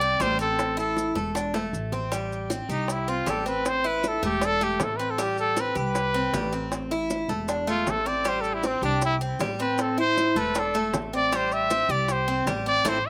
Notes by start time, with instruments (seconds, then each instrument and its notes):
Already playing: upright bass C2, trumpet D5
0.01 cuban tres C4, maracas
0.20 upright bass A1, cuban tres G3, trumpet C5, high bongo, low bongo, maracas
0.39 cuban tres C4, trumpet A4, maracas
0.59 high bongo, maracas
0.77 cuban tres E4, trumpet A4, high bongo, maracas
0.97 high bongo, maracas
1.15 upright bass E1, cuban tres A3, high bongo, maracas
1.35 cuban tres D4, high bongo, maracas
1.54 cuban tres A3, high bongo, maracas
1.73 upright bass A1, maracas
1.92 cuban tres C4, low bongo, maracas
2.12 cuban tres G3, high bongo, maracas
2.32 maracas
2.50 cuban tres C4, high bongo, maracas
2.69 upright bass C2, trumpet D#4, cuban tres G4, maracas
2.88 trumpet E4, high bongo, maracas
3.08 cuban tres C4, trumpet F4, maracas
3.26 upright bass A1, cuban tres G3, trumpet A4, high bongo, low bongo, maracas
3.46 cuban tres C4, trumpet B4, maracas
3.66 trumpet C5, high bongo, maracas
3.84 cuban tres E4, trumpet B4, high bongo, maracas
4.04 high bongo, maracas
4.08 trumpet A4
4.23 upright bass E1, cuban tres A3, trumpet G4, high bongo, maracas
4.41 cuban tres D4, high bongo, maracas
4.46 trumpet A4
4.60 cuban tres A3, trumpet G4, high bongo, maracas
4.80 upright bass A1, trumpet A4, high bongo, low bongo, maracas
4.97 cuban tres C4, trumpet B4, maracas
5.11 trumpet A4
5.18 cuban tres G3, high bongo, maracas
5.23 trumpet G4
5.38 trumpet A4, maracas
5.57 cuban tres C4, high bongo, maracas
5.61 trumpet B4
5.75 upright bass C2, cuban tres G4, trumpet B4, maracas
5.95 high bongo, maracas
6.14 cuban tres C4, maracas
6.33 upright bass A1, cuban tres G3, high bongo, low bongo, maracas
6.53 cuban tres C4, maracas
6.72 high bongo, maracas
6.91 cuban tres E4, high bongo, maracas
7.10 high bongo, maracas
7.28 upright bass E1, cuban tres A3, high bongo, maracas
7.48 cuban tres D4, high bongo, maracas
7.67 cuban tres A3, trumpet F4, high bongo, maracas
7.86 upright bass A1, trumpet A4, high bongo, low bongo, maracas
8.06 cuban tres C4, trumpet D5, maracas
8.25 cuban tres G3, trumpet C5, high bongo, maracas
8.41 trumpet A4, maracas
8.54 trumpet E4
8.63 cuban tres C4, trumpet C4, high bongo, maracas
8.82 upright bass C2, trumpet D4, cuban tres G4, maracas
9.02 trumpet E4, high bongo, maracas
9.21 cuban tres C4, maracas
9.39 upright bass A1, cuban tres G3, high bongo, low bongo, maracas
9.59 cuban tres C4, trumpet B4, maracas
9.78 trumpet A4, high bongo, maracas
9.98 cuban tres E4, trumpet C5, high bongo, maracas
10.17 high bongo, maracas
10.35 upright bass E1, cuban tres A3, trumpet B4, high bongo, maracas
10.55 cuban tres D4, high bongo, maracas
10.59 trumpet A4
10.74 cuban tres A3, high bongo, maracas
10.93 upright bass A1, high bongo, low bongo, maracas
11.13 cuban tres C4, trumpet D5, maracas
11.32 cuban tres G3, trumpet C5, high bongo, maracas
11.52 trumpet E5, maracas
11.70 cuban tres C4, high bongo, maracas
11.89 upright bass C2, cuban tres G4, trumpet D5, maracas
12.08 trumpet C5, high bongo, maracas
12.28 cuban tres C4, maracas
12.46 upright bass A1, cuban tres G3, high bongo, low bongo, maracas
12.66 cuban tres C4, trumpet D5, maracas
12.84 upright bass A1, cuban tres A3 C4 E4, high bongo, maracas
12.89 trumpet C5
13.06 trumpet E5